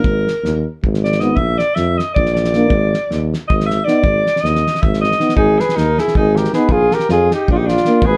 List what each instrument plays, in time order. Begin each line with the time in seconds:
Already playing: alto saxophone A#4
0.04 tuba G#1, kick
0.28 snare
0.44 tuba D#2, snare
0.84 tuba G#1, kick
0.94 snare
1.04 alto saxophone D5, snare
1.12 snare
1.20 euphonium B3 D#4, alto saxophone D#5, snare
1.36 tuba A#1, alto saxophone E5, kick
1.58 alto saxophone D5, snare
1.75 tuba F2, alto saxophone E5, snare
1.98 alto saxophone D#5, snare
2.14 tuba A#1, alto saxophone D5, kick
2.26 snare
2.34 alto saxophone D5, snare
2.44 snare
2.53 euphonium A#3 D4, snare
2.70 tuba G#1, kick
2.94 snare
3.10 tuba D#2, snare
3.34 snare
3.48 tuba G#1, alto saxophone D#5, kick
3.60 snare
3.66 alto saxophone E5, snare
3.84 euphonium B3 D#4, alto saxophone D5, snare
4.03 tuba G#1, kick
4.26 snare
4.36 snare
4.41 tuba D#2, alto saxophone D#5
4.45 snare
4.56 snare
4.67 snare
4.75 snare
4.82 tuba G#1, alto saxophone E5, kick
4.93 snare
5.01 alto saxophone D#5, snare
5.12 snare
5.19 euphonium B3 D#4, snare
5.29 snare
5.36 tuba G#1, alto saxophone D#4, flugelhorn G#4, kick
5.59 alto saxophone G#4, flugelhorn B4, snare
5.69 snare
5.76 tuba D#2, alto saxophone D#4, flugelhorn A#4, snare
5.98 alto saxophone E4, flugelhorn G#4, snare
6.08 snare
6.15 tuba G#1, alto saxophone D#4, flugelhorn G#4, kick
6.36 alto saxophone G4, flugelhorn A#4, snare
6.45 snare
6.53 euphonium B3 D#4, alto saxophone G#4, flugelhorn B4, snare
6.69 tuba A#1, alto saxophone F4, flugelhorn G#4, kick
6.91 alto saxophone G4, flugelhorn A#4, snare
6.99 snare
7.09 tuba F2, alto saxophone F4, flugelhorn G#4, snare
7.31 alto saxophone D#4, flugelhorn G4, snare
7.48 tuba A#1, alto saxophone D4, flugelhorn F4, kick
7.56 alto saxophone D#4, flugelhorn G4
7.66 alto saxophone D4, flugelhorn F4, snare
7.77 snare
7.85 euphonium A#3 D4, snare
8.02 tuba G#1, alto saxophone G#4, kick
8.06 flugelhorn B4